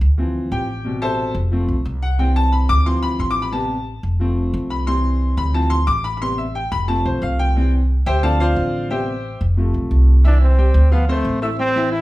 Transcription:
0.01 D2
0.18 E3 F3 C4
0.52 A1 G4 G5
0.85 B2 C3 G3
1.02 A4 C5 E5 A5
1.35 F1
1.51 F3 A3 C4
1.68 B1
1.85 C2
2.02 F#5
2.19 E3 G3 C4 G5
2.36 A5
2.52 B5
2.69 D2 D6
2.85 E3 F3 C4 C6
3.03 B5
3.19 A1 C6
3.31 D6
3.42 B5
3.52 C3 G3 B3 A5
4.03 F1
4.20 F3 A3 C4
4.54 C2
4.70 B5
4.86 E3 G3 C4 C6
5.37 D2 B5
5.54 E3 F3 C4 A5
5.70 C6
5.87 A1 D6
6.04 B5
6.17 B5
6.21 C3 G3 B3 C6
6.38 E5
6.55 G5
6.72 F1 B5
6.88 F3 A3 C4 A5
7.05 B1 C5
7.22 C2 F5
7.39 G5
7.56 E3 G3 C4
8.06 D2 G4 C5 E5 G5
8.23 D3 F3 C4 A4 D5 F5 A5
8.40 F4 C5 D5 F5
8.56 A1
8.90 C3 G3 B3 G4 C5 E5 G5
9.41 F1
9.57 C3 F3 A3
9.74 B1
9.91 C2
10.24 E3 D4 E4 E5
10.42 C4
10.58 G3 G4 G5
10.74 D2
10.91 F3 B3 F4 F5
11.09 A3 C4 C5 C6
11.25 A1
11.42 A3 E4 E5 E6
11.58 G3 C4 G4 G5
11.76 E3 E4 E5
11.92 E4

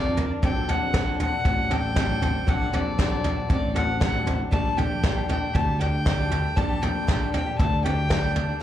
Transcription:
Already playing: A#1 F2 A#2 F3 A#3 D4 A#4 D5
0.06 F4
0.17 F3 A#3 D4 A#4, floor tom
0.31 D4
0.42 A#1 A#2 F#3 A#3 C4 D4 A4 D5 G5, kick, floor tom
0.56 D4
0.68 A#1 F#3 C4 D4 F#4 A4 D5 F#5, floor tom
0.82 C4
0.93 A#2 F#3 C4 D4 A4 D5, kick, snare, floor tom
1.07 F#4
1.19 F#3 C4 D4 A4 D5 F#5, floor tom
1.32 D4
1.44 A1 F#3 C4 D4 F#4 A4 D5, kick, floor tom
1.70 F#3 C4 D4 A4 D5 G5, floor tom
1.95 A#2 F#3 C4 D4 A4 D5, kick, snare, floor tom
2.09 D4
2.21 F#3 C4 D4 F#4 A4 D5, floor tom
2.34 C4
2.46 A#1 A#2 F#3 A#3 C4 D4 A4 D5 F#5, kick, floor tom
2.60 F#4
2.72 A#1 F#3 C4 D4 A4 D5, floor tom
2.85 D4
2.98 A#2 F#3 C4 D4 F#4 A4 D5, kick, snare, floor tom
3.11 C4
3.24 F#3 C4 D4 A4 D5, floor tom
3.36 F#4
3.49 A1 F#3 C4 D4 A4 D5, kick, floor tom
3.62 D4
3.75 F#3 C4 D4 F#4 A4 D5 F#5, floor tom
3.87 C4
4.00 A#2 F#3 C4 D4 A4 D5 F#5, kick, snare, floor tom
4.13 F#4
4.26 F#3 C4 D4 A4 D5, floor tom
4.39 D4
4.51 A#1 A#2 G3 A3 A#3 D4 A4 D5 A5, kick, floor tom
4.64 D4
4.76 A#1 G3 A#3 D4 G4 A4 D5 G5, floor tom
4.90 A3
5.03 A#2 G3 A#3 D4 A4 D5, kick, snare, floor tom
5.16 G4
5.28 G3 A3 A#3 D4 A4 D5 G5, floor tom
5.41 D4
5.53 D2 G3 A#3 D4 G4 A4 D5 A5, kick, floor tom
5.79 G3 A#3 D4 A4 D5 G5, floor tom
6.05 A#2 G3 A3 A#3 D4 A4 D5, kick, snare, floor tom
6.18 D4
6.31 G3 A#3 D4 G4 A4 D5, floor tom
6.43 A3
6.56 A#1 A#2 G3 A#3 D4 A4 D5 A5, kick, floor tom
6.69 G4
6.82 A#1 G3 A3 A#3 D4 A4 D5 G5, floor tom
6.95 D4
7.07 A#2 G3 A#3 D4 G4 A4 D5, kick, snare, floor tom
7.20 A3
7.33 G3 A#3 D4 A4 D5 G5, floor tom
7.46 G4
7.58 D2 G3 A3 A#3 D4 A4 D5 A5, kick, floor tom
7.72 D4
7.83 G3 A#3 D4 G4 A4 D5 G5, floor tom
7.98 A3
8.09 A#2 G3 A#3 D4 A4 D5, kick, snare, floor tom
8.23 G4
8.34 G3 A3 A#3 D4 A4 D5, floor tom
8.49 D4

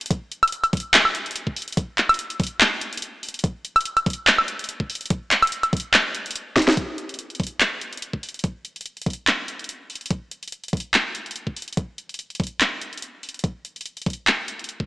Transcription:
0.01 closed hi-hat
0.06 closed hi-hat
0.11 kick, closed hi-hat
0.32 closed hi-hat
0.43 closed hi-hat, high woodblock
0.48 closed hi-hat
0.52 closed hi-hat
0.64 closed hi-hat, high woodblock
0.73 kick, closed hi-hat
0.77 closed hi-hat
0.80 closed hi-hat
0.94 clap, closed hi-hat
1.05 high woodblock
1.15 closed hi-hat
1.26 closed hi-hat
1.31 closed hi-hat
1.36 closed hi-hat
1.47 kick
1.56 open hi-hat
1.62 closed hi-hat
1.68 closed hi-hat
1.72 closed hi-hat
1.77 kick, closed hi-hat
1.98 clap, closed hi-hat
2.09 closed hi-hat, high woodblock
2.14 closed hi-hat
2.19 closed hi-hat
2.30 closed hi-hat
2.40 kick, closed hi-hat
2.43 closed hi-hat
2.47 closed hi-hat
2.61 clap, closed hi-hat
2.81 closed hi-hat
2.93 closed hi-hat
2.97 closed hi-hat
3.02 closed hi-hat
3.23 open hi-hat
3.29 closed hi-hat
3.34 closed hi-hat
3.39 closed hi-hat
3.44 kick, closed hi-hat
3.65 closed hi-hat
3.76 closed hi-hat, high woodblock
3.81 closed hi-hat
3.85 closed hi-hat
3.97 closed hi-hat, high woodblock
4.06 kick, closed hi-hat
4.10 closed hi-hat
4.13 closed hi-hat
4.27 clap, closed hi-hat
4.38 high woodblock
4.48 closed hi-hat
4.59 closed hi-hat
4.64 closed hi-hat
4.69 closed hi-hat
4.80 kick
4.90 open hi-hat
4.95 closed hi-hat
5.01 closed hi-hat
5.06 closed hi-hat
5.10 kick, closed hi-hat
5.31 clap, closed hi-hat
5.42 closed hi-hat, high woodblock
5.47 closed hi-hat
5.52 closed hi-hat
5.63 closed hi-hat, high woodblock
5.73 kick, closed hi-hat
5.77 closed hi-hat
5.80 closed hi-hat
5.94 clap, closed hi-hat
6.15 closed hi-hat
6.26 closed hi-hat
6.31 closed hi-hat
6.36 closed hi-hat
6.56 kick, snare, open hi-hat
6.62 closed hi-hat
6.68 snare, closed hi-hat
6.72 closed hi-hat
6.77 kick, closed hi-hat
6.98 closed hi-hat
7.09 closed hi-hat
7.14 closed hi-hat
7.19 closed hi-hat
7.30 closed hi-hat
7.35 closed hi-hat
7.40 kick, closed hi-hat
7.43 closed hi-hat
7.47 closed hi-hat
7.61 clap, closed hi-hat
7.81 closed hi-hat
7.93 closed hi-hat
7.97 closed hi-hat
8.02 closed hi-hat
8.13 kick
8.23 open hi-hat
8.29 closed hi-hat
8.34 closed hi-hat
8.39 closed hi-hat
8.44 kick, closed hi-hat
8.65 closed hi-hat
8.76 closed hi-hat
8.81 closed hi-hat
8.86 closed hi-hat
8.97 closed hi-hat
9.02 closed hi-hat
9.06 kick, closed hi-hat
9.10 closed hi-hat
9.13 closed hi-hat
9.27 clap, closed hi-hat
9.48 closed hi-hat
9.59 closed hi-hat
9.64 closed hi-hat
9.69 closed hi-hat
9.90 open hi-hat
9.95 closed hi-hat
10.01 closed hi-hat
10.06 closed hi-hat
10.11 kick, closed hi-hat
10.31 closed hi-hat
10.43 closed hi-hat
10.48 closed hi-hat
10.52 closed hi-hat
10.64 closed hi-hat
10.68 closed hi-hat
10.73 kick, closed hi-hat
10.77 closed hi-hat
10.80 closed hi-hat
10.94 clap, closed hi-hat
11.15 closed hi-hat
11.26 closed hi-hat
11.31 closed hi-hat
11.36 closed hi-hat
11.47 kick
11.56 open hi-hat
11.62 closed hi-hat
11.68 closed hi-hat
11.73 closed hi-hat
11.77 kick, closed hi-hat
11.98 closed hi-hat
12.09 closed hi-hat
12.14 closed hi-hat
12.19 closed hi-hat
12.30 closed hi-hat
12.35 closed hi-hat
12.40 kick, closed hi-hat
12.44 closed hi-hat
12.47 closed hi-hat
12.61 clap, closed hi-hat
12.81 closed hi-hat
12.93 closed hi-hat
12.97 closed hi-hat
13.02 closed hi-hat
13.23 open hi-hat
13.29 closed hi-hat
13.34 closed hi-hat
13.39 closed hi-hat
13.44 kick, closed hi-hat
13.65 closed hi-hat
13.76 closed hi-hat
13.81 closed hi-hat
13.86 closed hi-hat
13.97 closed hi-hat
14.02 closed hi-hat
14.06 kick, closed hi-hat
14.10 closed hi-hat
14.13 closed hi-hat
14.27 clap, closed hi-hat
14.48 closed hi-hat
14.59 closed hi-hat
14.64 closed hi-hat
14.69 closed hi-hat
14.80 kick

